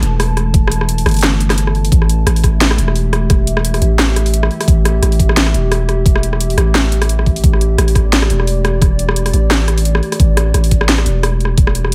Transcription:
Already playing: E3 A3 A4 A5
0.02 E1, closed hi-hat
0.20 cross-stick, open hi-hat
0.37 cross-stick, closed hi-hat
0.54 kick, closed hi-hat
0.68 cross-stick
0.72 closed hi-hat
0.81 cross-stick
0.89 closed hi-hat
0.98 open hi-hat
1.06 G1, cross-stick, closed hi-hat
1.09 closed hi-hat
1.11 closed hi-hat
1.14 closed hi-hat
1.17 closed hi-hat
1.19 closed hi-hat
1.21 cross-stick, snare, closed hi-hat
1.23 closed hi-hat
1.40 closed hi-hat
1.50 cross-stick, snare, open hi-hat
1.58 closed hi-hat
1.67 cross-stick
1.75 open hi-hat
1.85 open hi-hat
1.92 A1, kick, closed hi-hat
2.02 cross-stick
2.09 closed hi-hat
2.24 A1 E5, cross-stick, closed hi-hat
2.36 open hi-hat
2.43 G4, kick, cross-stick, closed hi-hat
2.61 snare, closed hi-hat
2.71 cross-stick
2.78 E1, closed hi-hat
2.88 cross-stick
2.96 open hi-hat
3.13 cross-stick, closed hi-hat
3.30 kick, cross-stick, closed hi-hat
3.47 closed hi-hat
3.57 cross-stick
3.65 closed hi-hat
3.74 cross-stick, open hi-hat
3.82 A1, closed hi-hat
3.99 cross-stick, snare, closed hi-hat
4.16 cross-stick, closed hi-hat
4.26 open hi-hat
4.34 closed hi-hat
4.43 cross-stick
4.51 open hi-hat
4.61 cross-stick, open hi-hat
4.68 A1, kick, closed hi-hat
4.85 cross-stick, closed hi-hat
5.02 A1, cross-stick, closed hi-hat
5.12 open hi-hat
5.20 kick, closed hi-hat
5.29 cross-stick
5.37 snare, closed hi-hat
5.47 cross-stick
5.54 E1, closed hi-hat
5.72 cross-stick, open hi-hat
5.89 cross-stick, closed hi-hat
6.06 kick, closed hi-hat
6.16 cross-stick
6.23 closed hi-hat
6.33 cross-stick
6.41 closed hi-hat
6.50 open hi-hat
6.57 A1, cross-stick, closed hi-hat
6.75 cross-stick, snare, closed hi-hat
6.92 closed hi-hat
7.02 cross-stick, open hi-hat
7.09 closed hi-hat
7.19 cross-stick
7.26 kick, open hi-hat
7.36 open hi-hat
7.44 A1, kick, closed hi-hat
7.53 cross-stick
7.61 closed hi-hat
7.76 A1 D5, cross-stick, closed hi-hat
7.88 open hi-hat
7.95 kick, cross-stick, closed hi-hat
8.13 snare, closed hi-hat
8.22 cross-stick
8.30 E1, closed hi-hat
8.40 cross-stick
8.47 open hi-hat
8.65 cross-stick, closed hi-hat
8.82 kick, cross-stick, closed hi-hat
8.99 closed hi-hat
9.09 cross-stick
9.16 closed hi-hat
9.26 cross-stick, open hi-hat
9.33 A1, closed hi-hat
9.51 cross-stick, snare, closed hi-hat
9.68 cross-stick, closed hi-hat
9.78 open hi-hat
9.85 closed hi-hat
9.95 cross-stick
10.03 open hi-hat
10.12 cross-stick, open hi-hat
10.20 A1, kick, closed hi-hat
10.37 cross-stick, closed hi-hat
10.54 A1, cross-stick, closed hi-hat
10.64 open hi-hat
10.71 kick, closed hi-hat
10.81 cross-stick
10.89 snare, closed hi-hat
10.98 cross-stick
11.06 E1, closed hi-hat
11.23 cross-stick, open hi-hat
11.40 closed hi-hat
11.45 cross-stick
11.58 kick, closed hi-hat
11.67 cross-stick
11.75 closed hi-hat
11.85 cross-stick

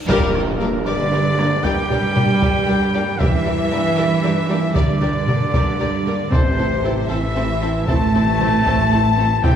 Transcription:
0.07 G2 A#2 G3 G4 A#4 D5, taiko, tam-tam, impact
0.33 G3 G4 A#4 D5, taiko rim
0.58 G3 A#3 D4 G4 A#4 D5
0.85 G2 D3 G3 G4 A#4 D5
1.12 G3 G4 A#4 D5
1.38 G3 A#3 D4 G4 A#4 D5, taiko rim
1.62 G2 G3 G4 A#4 D5 G5, taiko
1.90 G3 G4 A#4 D5, taiko low-mid
2.15 G3 A#3 D4 G4 A#4 D5, taiko low-mid
2.40 G2 G3 G4 A#4 D5, taiko
2.67 G3 G4 A#4 D5
2.94 G3 A#3 D4 G4 A#4 D5
3.19 G2 E3 G3 G4 A#4 D5 E5, taiko
3.45 G3 G4 A#4 D5
3.71 G3 A#3 D4 G4 A#4 D5
3.96 G2 G3 G4 A#4 D5
4.23 G3 G4 A#4 D5
4.48 G3 A#3 D4 G4 A#4 D5
4.74 G2 D3 G3 G4 A#4 D5, taiko
5.01 G3 G4 A#4 D5, taiko low-mid
5.27 G3 A#3 D4 G4 A#4 D5, taiko low-mid
5.54 G2 G3 G4 A#4 D5, taiko
5.79 G3 G4 A#4 D5
6.06 G3 A#3 D4 G4 A#4 D5
6.31 A1 C3 C4 E4 A4 C5, taiko
6.57 C4 E4 A4 C5
6.84 C4 E4 A4 C5
7.09 A1 E3 C4 E4 A4 C5 E5
7.35 C4 E4 A4 C5
7.61 C4 E4 A4 C5
7.87 A1 A3 C4 E4 A4 C5 A5, taiko
8.14 C4 E4 A4 C5, taiko low-mid
8.40 C4 E4 A4 C5, taiko low-mid
8.64 A1 C4 E4 A4 C5, taiko
8.91 C4 E4 A4 C5
9.17 C4 E4 A4 C5
9.43 C2 G3 C4 E4 G4 C5 G5, taiko

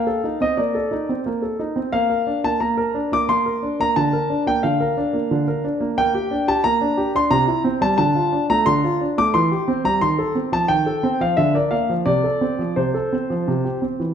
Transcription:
Already playing: F5
0.07 A4
0.24 D#4
0.41 C4 D#5
0.57 A#3 D5
0.75 A4
0.91 D#4
1.09 C4
1.26 A#3
1.42 A4
1.59 D#4
1.76 C4
1.92 A#3 F5
2.10 A#4
2.27 D4
2.44 A#3 A5
2.60 A#3 A#5
2.77 A#4
2.94 D4
3.12 A#3 D6
3.29 A#3 C6
3.46 A#4
3.63 D4
3.80 A#3 A#5
3.96 D3 A5
4.13 A#4
4.30 D4
4.47 A#3 G5
4.63 D3 F5
4.80 A#4
4.97 D4
5.13 A#3
5.31 D3
5.48 A#4
5.64 D4
5.80 A#3
5.98 A#3 G5
6.14 G4
6.31 D4
6.48 G4 A5
6.64 A#3 A#5
6.81 D4
6.97 G4
7.15 D4 C6
7.31 C3 A#5
7.48 E4
7.64 C4
7.81 G3 A5
7.98 D3 A5
8.15 F4
8.32 D4
8.50 A3 A#5
8.66 D3 C6
8.84 F4
9.01 D4
9.18 A3 D6
9.34 E3 C6
9.52 G4
9.68 C4
9.84 G3 A#5
10.01 D#3 C6
10.19 A4
10.35 C4
10.52 F3 A5
10.68 D#3 G5
10.86 A4
11.03 C4
11.20 F3 F5
11.37 D3 E5
11.54 A#4 D5
11.71 A#3 F5
11.89 F3
12.06 C3 D5
12.24 A4
12.41 C4
12.59 F3
12.76 C3 C5
12.94 A4
13.13 C4
13.30 F3
13.48 C3
13.65 G4
13.82 C4
14.00 E3

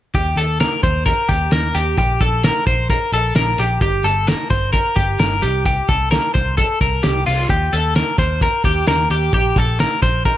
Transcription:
0.15 D#2 G4, kick, closed hi-hat
0.36 D#2 A4, closed hi-hat
0.60 A#4, snare, closed hi-hat
0.83 D#2 C5, kick, closed hi-hat
1.06 A#4, kick, closed hi-hat
1.29 D#2 G4, kick, closed hi-hat
1.51 D#2 A#4, snare, closed hi-hat
1.74 D#2 G4, closed hi-hat
1.97 A#1 G4, kick, closed hi-hat
2.21 A#1 A4, kick, closed hi-hat
2.43 A#4, snare, closed hi-hat
2.67 A#1 C5, kick, closed hi-hat
2.90 A#4, kick, closed hi-hat
3.12 A#1 A4, closed hi-hat
3.35 A#1 A#4, snare, closed hi-hat
3.58 A#1 G4, closed hi-hat
3.81 G1 G4, kick, closed hi-hat
4.04 G1 A4, closed hi-hat
4.27 A#4, snare, closed hi-hat
4.50 G1 C5, kick, closed hi-hat
4.73 A#4, kick, closed hi-hat
4.96 G1 G4, kick, closed hi-hat
5.19 G1 A#4, snare, closed hi-hat
5.42 C2 G4, closed hi-hat
5.65 G4, kick, closed hi-hat
5.89 C2 A4, kick, closed hi-hat
6.11 A#4, snare, closed hi-hat
6.34 C2 C5, kick, closed hi-hat
6.57 A4, kick, closed hi-hat
6.81 C2 A#4, kick, closed hi-hat
7.03 C2 G4, snare, closed hi-hat
7.26 C2 F4, open hi-hat
7.49 D#2 G4, kick, closed hi-hat
7.72 D#2 A4, closed hi-hat
7.95 A#4, snare, closed hi-hat
8.18 D#2 C5, kick, closed hi-hat
8.41 A#4, kick, closed hi-hat
8.64 D#2 G4, kick, closed hi-hat
8.87 D#2 A#4, snare, closed hi-hat
9.10 D#2 G4, closed hi-hat
9.33 A#1 G4, kick, closed hi-hat
9.56 A#1 A4, kick, closed hi-hat
9.79 A#4, snare, closed hi-hat
10.02 A#1 C5, kick, closed hi-hat
10.25 A#4, kick, closed hi-hat

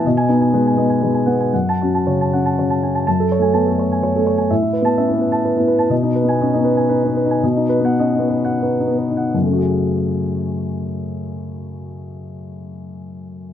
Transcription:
0.06 B2 D#5
0.17 G#5
0.28 B3 D#4
0.41 G#5
0.54 G#3 B4
0.67 G#5
0.77 B3 D#5
0.90 G#5
1.02 G#3 B4
1.14 G#5
1.26 B3 F#5
1.40 G#5
1.53 F#2 F#5
1.69 A5
1.82 C#4 F#4
1.95 A5
2.07 C#3 C#5
2.21 A5
2.33 C#4 F#5
2.46 A5
2.59 C#3 C#5
2.70 A5
2.83 C#4 G#5
2.95 A5
3.07 F#2 A5
3.20 A4
3.32 C#5
3.39 A3 G#5
3.54 B3 A5
3.67 A3 A4
3.79 C#5
3.92 G#5
4.03 C#5
4.16 A3 A4
4.27 C#5
4.38 G#5
4.50 A2 E5
4.62 E4
4.73 B4
4.82 B3 A5
4.97 C#4 E5
5.08 E4
5.13 B3
5.20 B4
5.32 A5
5.45 B4
5.57 B3 E4
5.67 B4
5.79 A5
5.90 B2 D#5
6.03 D#4
6.15 B4
6.24 B3
6.29 G#5
6.41 C#4 D#5
6.54 B3 D#4
6.64 B4
6.77 G#5
6.89 D#4 B4
7.04 B3 D#4
7.16 B4
7.25 D#4
7.31 G#5
7.43 B2 D#5
7.56 D#4
7.69 B4
7.80 B3
7.85 F#5
7.99 C#4 D#5
8.15 D#4
8.19 B3
8.29 B4
8.45 F#5
8.62 D#4 B4
8.80 D#4
8.87 B3
8.98 B4
9.10 D#4
9.17 F#5
9.34 F#2
9.39 C#3
9.44 A3
9.48 C#4
9.53 F#4
9.58 G#4

